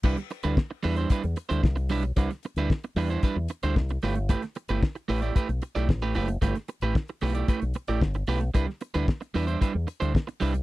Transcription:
<<
  \new Staff \with { instrumentName = "Clean electric guitar" } { \time 4/4 \key c \lydian \tempo 4 = 113 <g d' e' b'>16 r8 <g d' e' b'>16 r8 <g d' e' b'>16 <g d' e' c''>16 <g d' e' b'>16 r8 <g d' e' c''>16 r8 <g d' e' b'>16 r16 | <g d' e' b'>16 r8 <g d' e' b'>16 r8 <g d' e' b'>16 <g d' e' c''>16 <g d' e' b'>16 r8 <g d' e' c''>16 r8 <a e' g' b'>16 r16 | <a e' g' b'>16 r8 <a e' g' b'>16 r8 <a e' g' b'>16 <a e' g' d''>16 <a e' g' b'>16 r8 <a e' g' d''>16 r16 <a e' g' b'>16 <a e' g' b'>16 r16 | <a e' g' b'>16 r8 <a e' g' b'>16 r8 <a e' g' b'>16 <a e' g' d''>16 <a e' g' b'>16 r8 <a e' g' d''>16 r8 <a e' g' b'>16 r16 |
<g d' e' b'>16 r8 <g d' e' b'>16 r8 <g d' e' b'>16 <g d' e' c''>16 <g d' e' b'>16 r8 <g d' e' c''>16 r8 <g d' e' b'>16 r16 | }
  \new Staff \with { instrumentName = "Fingered electric bass" } { \clef bass \time 4/4 \key c \lydian c,16 r8 d,16 r8 e,8 r16 e,16 r16 d,16 c,8 b,,8 | c,16 r8 d,16 r8 e,8 r16 e,16 r16 d,16 c,8 g,,8~ | g,,16 r8 g,,16 r8 a,,8 r16 b,,16 r16 b,,16 a,,8 fis,,8 | g,,16 r8 a,,16 r8 b,,8 r16 b,,16 r16 a,,16 g,,8 b,,8 |
c,16 r8 d,16 r8 e,8 r16 e,16 r16 d,16 r8 c,8 | }
  \new DrumStaff \with { instrumentName = "Drums" } \drummode { \time 4/4 <cymc bd>16 <hh sn>16 hh16 hh16 <bd sn>8 hho16 hh16 <hh bd>16 hh16 hh16 hh16 <bd sn>16 hh16 hho16 hh16 | <hh bd>16 <hh sn>16 hh16 hh16 <bd sn>16 hh16 hho16 hh16 <hh bd>8 hh16 hh16 <bd sn>16 hh16 hho16 hh16 | <hh bd>16 <hh sn>16 hh16 hh16 <bd sn>16 hh16 hho16 hh16 <hh bd>16 hh16 hh16 hh16 <bd sn>16 hh16 hho16 hh16 | <hh bd>16 <hh sn>16 hh16 hh16 <bd sn>16 hh16 hho16 hh16 <hh bd>16 hh16 hh16 hh16 <bd sn>16 hh16 hho16 hh16 |
<hh bd>16 sn16 hh16 hh16 <bd sn>16 hh16 hho16 hh16 <hh bd>8 hh16 hh16 <bd sn>16 hh16 hho16 hh16 | }
>>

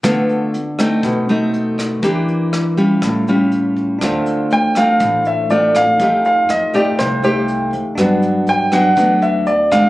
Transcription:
<<
  \new Staff \with { instrumentName = "Grand piano" } { \time 4/4 \key d \minor \tempo 4 = 121 r1 | r1 | r4 g''8 f''4 e''8 d''8 f''8~ | f''8 f''8 ees''8 d''8 c''8 c''4 r8 |
r4 g''8 fis''4 e''8 d''8 f''8 | }
  \new Staff \with { instrumentName = "Tine electric piano" } { \time 4/4 \key d \minor r1 | r1 | <d' a' c'' f''>1 | <ees' g' a' f''>1 |
<d' fis' b' fis''>1 | }
  \new Staff \with { instrumentName = "Nylon-string guitar" } { \time 4/4 \key d \minor << { <a b f'>4 r8 <a c' ees'>4 <a c' dis'>4. | <bes d' g'>4. <g cis' f'>4 <g cis' eis'>4. | <a c' f'>4. <a c' f'>4. <a c' f'>8 r8 | <a ees' g'>4 r8 <a ees' g'>4 <a ees' g'>4. |
<fis b d'>4. <fis b d'>8 <fis b d'>4 r8 <gis c' d'>8 | } \\ { d2 b,2 | e2 a,2 | d2 a,2 | f2 c2 |
g,2 d2 | } >> }
  \new Staff \with { instrumentName = "Upright bass" } { \clef bass \time 4/4 \key d \minor r1 | r1 | d,4 d,4 a,,4. e,16 r16 | f,4 f,4 c,4. d,16 r16 |
g,4 g,4 d,4. g,16 r16 | }
  \new DrumStaff \with { instrumentName = "Drums" } \drummode { \time 4/4 <hh bd ss>8 hh8 hh8 <hh bd ss>8 <hh bd>8 hh8 hh8 <hh bd ss>8 | <hh bd>8 hh8 <hh ss>8 <hh bd>8 <hh bd ss>8 hh8 hh8 <hh bd>8 | <hh bd ss>8 hh8 hh8 <hh ss>8 <hh bd>8 hh8 hh8 <hh ss>8 | <hh bd>8 hh8 <hh ss>8 hh8 <hh bd ss>8 hh8 hh8 hh8 |
<hh bd ss>8 hh8 hh8 <hh ss>8 <hh bd>8 hh8 hh8 <hh ss>8 | }
>>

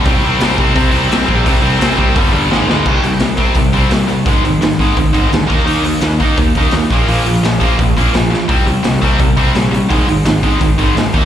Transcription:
<<
  \new Staff \with { instrumentName = "Distorted electric guitar" } { \clef bass \time 4/4 \key c \minor \tempo 4 = 171 <c g c'>8 <c g c'>8 <c g c'>8 <c g c'>8 <c g c'>8 <c g c'>8 <c g c'>8 <c g c'>8 | <c g c'>8 <c g c'>8 <c g c'>8 <c g c'>8 <g, d g>8 <g, d g>8 <aes, ees aes>8 <aes, ees aes>8 | <c g c'>8 <c g>8 <c g>8 <c g c'>8 <c g>8 <c g c'>8 <c g>8 <c g>8 | <aes, ees aes>8 <aes, ees>8 <aes, ees>8 <aes, ees aes>8 <aes, ees>8 <aes, ees aes>8 <aes, ees>8 <ees bes ees'>8 |
<ees bes ees'>8 <ees bes>8 <ees bes>8 <ees bes ees'>8 <ees bes>8 <ees bes ees'>8 <ees bes>8 <bes, f bes>8 | <bes, f bes>8 <bes, f>8 <bes, f>8 <bes, f bes>8 <bes, f>8 <bes, f bes>8 <bes, f>8 <bes, f>8 | <c g c'>8 <c g>8 <c g>8 <c g c'>8 <c g>8 <c g c'>8 <c g>8 <c g>8 | <aes, ees aes>8 <aes, ees>8 <aes, ees>8 <aes, ees aes>8 <aes, ees>8 <aes, ees aes>8 <aes, ees>8 <ees bes ees'>8 | }
  \new Staff \with { instrumentName = "Picked electric bass" } { \clef bass \time 4/4 \key c \minor c,8 c,8 c,8 c,8 c8 c,8 c,8 bes,,8 | c,8 c,8 c,8 c,8 g,,8 g,,8 aes,,8 d,8 | c,8 c,8 c,4 c,8 c,8 c,4 | aes,,8 aes,,8 aes,,4 aes,,8 aes,,8 d,8 ees,8 |
ees,8 ees,8 ees,4 ees,8 ees,8 ees,8 bes,,8 | bes,,8 bes,,8 bes,,4 bes,,8 bes,,8 bes,,4 | c,8 c,8 c,4 c,8 c,8 bes,,4 | aes,,8 aes,,8 aes,,4 aes,,8 aes,,8 aes,,8 ees,8 | }
  \new DrumStaff \with { instrumentName = "Drums" } \drummode { \time 4/4 <hho bd>4 <hho sn>8 bd8 <hho bd>4 <hho sn>8 bd8 | <hho bd>4 <hho sn>8 bd8 <hho bd>4 sn8 sn8 | <cymc bd>8 hho8 <hho sn>8 <hho bd>8 <hho bd>8 <hho bd>8 <hho sn>8 hho8 | <hho bd>8 hho8 <hho sn>8 <hho bd>8 <hho bd>8 <hho bd>8 <hho sn>8 <hho bd>8 |
hho8 hho8 <hho sn>8 <hho bd>8 <hho bd>8 <hho bd>8 <hho sn>8 <hho bd>8 | hho8 hho8 <hho sn>8 <hho bd>8 <hho bd>8 <hho bd>8 <hho sn>8 sn8 | <hho bd>8 hho8 <hho sn>8 <hho bd>8 <hho bd>8 <hho bd>8 <hho sn>8 hho8 | <hho bd>8 hho8 <hho sn>8 <hho bd>8 <hho bd>8 <hho bd>8 <hho sn>8 <hho bd>8 | }
>>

